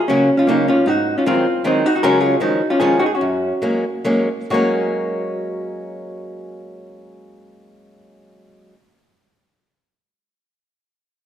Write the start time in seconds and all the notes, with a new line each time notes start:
0.00 G#4
0.08 C#3 F#3 A#3 C#4 F#4
0.37 C#4 F4
0.47 C#3 F#3 A#3 C#4 D#4
0.68 C#4 F4
0.86 G#2 D#4 F#4
1.18 C#4 F4
1.26 D#3 F#3 G#3 C4 F4
1.64 D#3 F#3 G#3 C4 D#4
1.86 D#4 F#4
1.95 D#4 F#4
2.03 C#3 F#3 G#3 C#4 F#4 A#4
2.20 F4 G#4
2.40 D#3 F3 G#3 C#4 D#4 F#4
2.70 C#4 F4
2.80 D#3 F3 G#3 C#4 F4 G#4
2.99 D#4 F#4
3.06 G#4
3.15 C#4 F#4
3.21 F#2
3.62 F#3 G#3 A#3 C#4
4.05 F#3 G#3 A#3 C#4
4.50 F#3 G#3 A#3 C#4 F#4